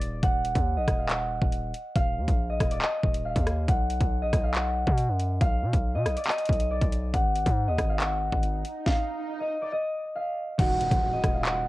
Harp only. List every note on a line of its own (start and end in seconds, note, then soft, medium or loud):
0.00 0.83 D5 medium
0.00 0.17 F5 loud
0.23 1.04 F#5 loud
0.77 2.49 D#5 medium
0.98 1.15 F5 medium
1.09 2.02 F#5 medium
1.96 3.25 F5 loud
2.50 2.77 D#5 medium
2.71 2.88 D5 medium
2.82 4.22 D#5 medium
3.25 3.74 F5 medium
3.68 4.50 F#5 loud
4.22 5.94 D#5 medium
4.44 4.60 F5 medium
4.54 5.47 F#5 medium
5.41 7.07 F5 loud
5.95 6.23 D#5 medium
6.17 6.34 D5 medium
6.28 6.77 D#5 loud
6.71 7.74 D5 medium
7.14 7.95 F#5 loud
7.68 9.40 D#5 medium
7.89 8.06 F5 medium
8.00 8.92 F#5 medium
8.86 10.15 F5 loud
9.40 9.68 D#5 medium
9.62 9.78 D5 medium
9.72 11.13 D#5 medium
10.16 10.65 F5 medium
10.59 11.40 F#5 loud
11.13 11.68 D#5 medium
11.34 11.51 F5 medium
11.45 11.68 F#5 medium